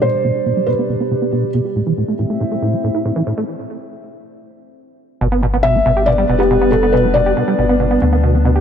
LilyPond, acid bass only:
\new Staff \with { instrumentName = "Acid bass" } { \clef bass \time 4/4 \key g \mixolydian \tempo 4 = 139 b,16 r16 b,16 g'16 b,16 g16 b,16 b16 b,16 b16 b,16 b16 b,16 g'16 b,16 g'16 | a,16 e16 a,16 a16 a,16 a16 a,16 a16 a,16 e'16 a,16 e'16 a,16 e16 a,16 a16 | r1 | b,16 b16 b,16 b16 b,16 g'16 b,16 g'16 b,16 g16 b,16 b16 b,16 b16 b,16 b16 |
b,16 g'16 b,16 g'16 b,16 g16 b,16 b16 b,16 b16 b,16 b16 b,16 g'16 b,16 g'16 | }